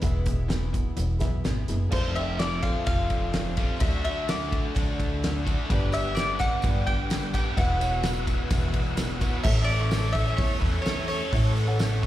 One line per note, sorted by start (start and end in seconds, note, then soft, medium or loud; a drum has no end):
0.02 0.80 E1 medium
0.02 0.24 E2 medium
0.02 0.26 E2 medium
0.02 0.24 B2 medium
0.02 0.27 B2 medium
0.02 0.27 E3 medium
0.02 0.27 G#3 medium
0.02 0.27 B3 medium
0.02 0.26 E4 medium
0.02 0.75 G#4 medium
0.02 0.75 B4 medium
0.02 0.76 E5 medium
0.02 kick loud
0.02 closed hi-hat medium
0.26 0.47 E2 medium
0.26 0.48 B2 medium
0.26 0.47 E3 soft
0.26 0.49 G#3 soft
0.26 0.50 B3 medium
0.26 0.50 E4 medium
0.26 kick medium
0.26 closed hi-hat medium
0.48 0.71 E2 medium
0.48 0.71 B2 medium
0.48 1.20 E3 medium
0.48 1.20 G#3 medium
0.48 1.18 B3 medium
0.48 1.18 E4 medium
0.48 snare loud
0.48 closed hi-hat medium
0.73 0.95 E2 medium
0.73 0.95 B2 medium
0.73 kick medium
0.73 closed hi-hat medium
0.97 1.17 E1 medium
0.97 1.18 E2 medium
0.97 1.19 B2 medium
0.97 closed hi-hat medium
1.19 1.43 B1 medium
1.19 1.43 E2 medium
1.19 1.43 B2 medium
1.19 1.43 E3 soft
1.19 1.43 G#3 soft
1.19 1.44 B3 medium
1.19 1.44 E4 medium
1.19 1.74 G#4 medium
1.19 1.75 B4 medium
1.19 1.75 E5 medium
1.19 kick medium
1.19 snare soft
1.19 closed hi-hat medium
1.44 1.66 G#1 medium
1.44 1.66 E2 medium
1.44 1.66 B2 medium
1.44 1.68 E3 medium
1.44 1.68 G#3 medium
1.44 1.67 B3 medium
1.44 1.67 E4 medium
1.44 snare medium
1.44 closed hi-hat medium
1.68 1.90 F#1 medium
1.68 1.90 E2 medium
1.68 1.91 B2 medium
1.68 1.91 E3 medium
1.68 1.92 G#3 soft
1.68 1.92 B3 soft
1.68 1.92 E4 medium
1.68 closed hi-hat medium
1.89 2.70 F1 medium
1.89 3.55 F2 medium
1.89 3.56 C3 medium
1.89 3.56 F3 medium
1.89 2.16 F3 medium
1.89 3.56 A3 medium
1.89 2.16 C4 medium
1.89 3.56 C4 medium
1.89 2.16 D4 medium
1.89 3.56 F4 medium
1.89 2.09 A4 medium
1.89 2.17 C5 medium
1.89 2.09 D5 medium
1.89 2.09 F5 medium
1.89 kick loud
1.89 crash loud
1.93 2.14 A4 medium
2.15 2.37 C4 soft
2.15 2.37 D4 soft
2.15 2.38 A4 soft
2.15 2.88 A4 medium
2.15 2.89 D5 medium
2.15 2.40 E5 medium
2.15 2.89 G5 medium
2.15 ride medium
2.38 2.83 F3 soft
2.38 2.85 C4 medium
2.38 2.87 D4 medium
2.38 2.86 A4 medium
2.38 2.61 D5 medium
2.38 snare medium
2.38 ride medium
2.63 2.85 F5 medium
2.63 kick medium
2.63 ride medium
2.84 3.64 F1 medium
2.84 3.31 F3 medium
2.84 3.33 C4 medium
2.84 3.34 D4 medium
2.84 3.34 A4 medium
2.84 3.81 F5 medium
2.84 kick loud
2.84 ride medium
3.10 kick medium
3.10 ride medium
3.32 3.56 F3 medium
3.32 3.57 C4 medium
3.32 3.57 D4 medium
3.32 3.57 A4 medium
3.32 snare loud
3.32 ride medium
3.57 3.81 F2 medium
3.57 3.81 C3 medium
3.57 3.80 F3 medium
3.57 3.80 A3 medium
3.57 3.79 C4 medium
3.57 3.82 C4 medium
3.57 3.81 D4 soft
3.57 3.79 F4 medium
3.57 3.81 A4 medium
3.57 kick medium
3.57 ride medium
3.80 4.58 D2 medium
3.80 5.44 D3 medium
3.80 4.05 D3 medium
3.80 4.06 F#3 medium
3.80 5.45 A3 medium
3.80 4.06 A3 medium
3.80 5.45 D4 medium
3.80 4.05 D4 medium
3.80 4.04 E4 medium
3.80 3.99 F#4 medium
3.80 5.44 F#4 medium
3.80 3.99 D5 medium
3.80 4.03 E5 medium
3.80 4.00 E5 medium
3.80 kick loud
3.80 ride medium
4.04 4.27 A3 soft
4.04 4.29 D4 soft
4.04 4.28 E4 soft
4.04 4.78 F#4 medium
4.04 4.78 D5 medium
4.04 4.29 E5 medium
4.04 4.78 E5 medium
4.04 ride medium
4.28 4.73 F#3 medium
4.28 4.74 A3 medium
4.28 4.75 D4 medium
4.28 4.76 E4 medium
4.28 4.72 D5 medium
4.28 snare loud
4.28 ride medium
4.52 kick medium
4.52 ride medium
4.75 5.53 D2 loud
4.75 5.22 D3 medium
4.75 5.21 F#3 medium
4.75 5.22 A3 medium
4.75 5.22 D4 medium
4.75 5.23 E4 medium
4.75 kick loud
4.75 ride medium
5.00 kick medium
5.00 ride medium
5.22 5.46 F#3 medium
5.22 5.46 A3 medium
5.22 5.46 D4 medium
5.22 5.46 E4 medium
5.22 snare loud
5.22 ride medium
5.45 5.69 D3 medium
5.45 5.68 A3 medium
5.45 5.70 A3 soft
5.45 5.68 D4 medium
5.45 5.70 D4 medium
5.45 5.70 E4 medium
5.45 5.68 F#4 medium
5.45 kick medium
5.45 ride medium
5.69 6.46 G1 medium
5.69 7.32 G2 medium
5.69 6.17 G2 medium
5.69 6.17 D3 medium
5.69 7.33 D3 medium
5.69 7.33 G3 medium
5.69 6.15 G3 medium
5.69 7.33 B3 medium
5.69 6.17 B3 medium
5.69 6.16 D4 medium
5.69 7.33 D4 medium
5.69 7.55 G4 medium
5.69 5.88 G4 medium
5.69 6.17 G4 medium
5.69 7.33 G4 medium
5.69 9.42 B4 medium
5.69 5.88 B4 medium
5.69 5.95 B4 medium
5.69 5.88 D5 medium
5.69 7.55 D6 medium
5.69 kick loud
5.69 ride medium
5.69 tambourine soft
5.92 6.64 G4 medium
5.92 6.64 B4 medium
5.92 6.65 D5 medium
5.92 6.15 E5 loud
5.92 ride medium
5.92 tambourine medium
6.15 6.62 G3 medium
6.15 6.63 B3 medium
6.15 6.63 D4 medium
6.15 6.63 G4 medium
6.15 6.40 D5 medium
6.15 snare loud
6.15 ride medium
6.15 tambourine medium
6.39 6.83 F#5 loud
6.39 kick medium
6.39 ride medium
6.39 tambourine medium
6.62 7.41 G1 medium
6.62 7.10 G2 medium
6.62 7.10 D3 medium
6.62 7.09 G3 medium
6.62 7.11 B3 medium
6.62 7.11 D4 medium
6.62 7.11 G4 medium
6.62 kick loud
6.62 ride medium
6.62 tambourine medium
6.86 7.33 G5 medium
6.86 kick medium
6.86 ride medium
6.86 tambourine soft
7.10 7.34 G3 medium
7.10 7.34 B3 medium
7.10 7.33 D4 medium
7.10 7.32 G4 medium
7.10 snare loud
7.10 ride medium
7.10 tambourine medium
7.33 7.56 G2 medium
7.33 7.57 D3 medium
7.33 7.57 G3 medium
7.33 7.58 G3 soft
7.33 7.56 B3 medium
7.33 7.58 B3 soft
7.33 7.57 D4 medium
7.33 7.56 D4 medium
7.33 7.57 G4 medium
7.33 7.56 G4 medium
7.33 7.58 G5 medium
7.33 kick medium
7.33 ride medium
7.33 tambourine medium
7.55 8.35 E1 medium
7.55 9.20 E2 medium
7.55 7.81 E2 medium
7.55 9.21 B2 medium
7.55 7.81 B2 medium
7.55 7.81 E3 medium
7.55 9.21 F#3 medium
7.55 7.80 E4 medium
7.55 7.76 F#4 medium
7.55 7.76 B4 medium
7.55 7.75 E5 medium
7.55 9.42 F#5 medium
7.55 8.95 F#5 medium
7.55 9.43 E6 medium
7.55 kick loud
7.55 ride loud
7.55 tambourine soft
7.59 7.81 B3 medium
7.59 9.21 B3 medium
7.59 9.21 E4 medium
7.59 7.79 F#4 medium
7.59 9.21 F#4 medium
7.79 8.03 E3 soft
7.79 8.03 B3 soft
7.79 8.04 E4 soft
7.79 8.52 F#4 medium
7.79 8.04 F#4 soft
7.79 8.52 B4 medium
7.79 8.52 C#5 medium
7.79 ride medium
7.79 tambourine medium
8.03 8.50 E3 medium
8.03 8.50 B3 medium
8.03 8.52 E4 medium
8.03 8.51 F#4 medium
8.03 snare loud
8.03 ride medium
8.03 tambourine medium
8.17 tambourine soft
8.27 kick medium
8.27 ride medium
8.27 tambourine medium
8.50 9.28 E1 medium
8.50 8.98 E2 medium
8.50 8.98 B2 loud
8.50 8.95 E3 medium
8.50 8.96 B3 medium
8.50 8.98 E4 loud
8.50 8.98 F#4 medium
8.50 kick loud
8.50 ride loud
8.50 tambourine medium
8.62 tambourine soft
8.74 kick medium
8.74 ride medium
8.86 tambourine soft
8.97 9.21 E3 medium
8.97 9.21 B3 medium
8.97 9.21 E4 medium
8.97 9.19 F#4 medium
8.97 snare loud
8.97 ride medium
8.97 tambourine medium
9.10 tambourine soft
9.20 9.45 B2 medium
9.20 9.44 E3 soft
9.20 9.45 B3 medium
9.20 9.44 B3 medium
9.20 9.45 E4 medium
9.20 9.44 E4 medium
9.20 9.44 F#4 medium
9.20 kick medium
9.20 ride medium
9.20 tambourine medium
9.24 9.45 E2 medium
9.24 9.45 F#3 medium
9.43 10.22 A1 loud
9.43 9.92 A2 medium
9.43 10.63 A2 medium
9.43 9.92 E3 medium
9.43 9.92 A3 medium
9.43 9.93 C#4 medium
9.43 12.06 A4 medium
9.43 9.71 A4 medium
9.43 9.93 A4 medium
9.43 9.72 C#5 medium
9.43 11.30 E5 medium
9.43 9.68 E5 loud
9.43 9.72 E5 medium
9.43 12.06 C#6 medium
9.43 kick loud
9.43 crash loud
9.64 10.15 D5 loud
9.64 open hi-hat medium
9.71 10.65 E3 medium
9.80 10.16 A4 medium
9.80 10.16 E5 medium
9.80 10.16 C#6 medium
9.91 10.87 E3 medium
9.91 10.63 A3 medium
9.91 10.40 A3 medium
9.91 10.63 C#4 medium
9.91 snare loud
9.91 open hi-hat medium
9.91 tambourine medium
9.95 10.62 A4 medium
10.12 10.38 E5 loud
10.12 kick medium
10.12 open hi-hat medium
10.18 10.86 C#4 medium
10.25 10.98 A4 medium
10.25 10.98 C#5 medium
10.25 10.98 E5 medium
10.37 10.58 E2 loud
10.37 10.59 C#5 medium
10.37 kick loud
10.37 open hi-hat medium
10.41 11.57 A3 medium
10.60 11.20 E2 medium
10.60 10.81 B4 medium
10.60 kick medium
10.60 open hi-hat medium
10.64 11.56 E3 medium
10.64 10.86 A3 soft
10.64 10.87 C#4 soft
10.64 10.87 A4 medium
10.82 11.07 C#5 medium
10.82 tambourine medium
10.86 11.10 E3 medium
10.86 11.10 A3 medium
10.86 12.03 C#4 medium
10.86 11.10 C#4 medium
10.86 11.09 A4 medium
10.86 snare loud
10.86 open hi-hat medium
11.08 12.06 A4 medium
11.08 11.33 A4 medium
11.08 11.52 C#5 medium
11.08 open hi-hat medium
11.12 11.35 A3 soft
11.12 11.34 C#4 medium
11.31 12.06 A1 loud
11.31 12.06 A2 medium
11.31 11.59 A4 medium
11.31 11.60 C#5 medium
11.31 11.60 E5 medium
11.31 12.06 F#5 medium
11.31 kick loud
11.31 open hi-hat medium
11.36 11.82 A2 medium
11.36 11.80 E3 medium
11.36 11.81 A3 medium
11.36 11.81 C#4 medium
11.36 11.81 A4 medium
11.56 12.06 E3 medium
11.56 open hi-hat medium
11.67 12.04 A4 medium
11.67 12.04 C#5 medium
11.67 12.04 F#5 loud
11.79 12.06 E3 medium
11.79 12.06 A3 medium
11.79 12.06 C#4 medium
11.79 12.06 A4 medium
11.79 snare loud
11.79 open hi-hat medium
11.79 tambourine medium
12.03 12.06 C#6 medium
12.03 kick medium
12.03 open hi-hat medium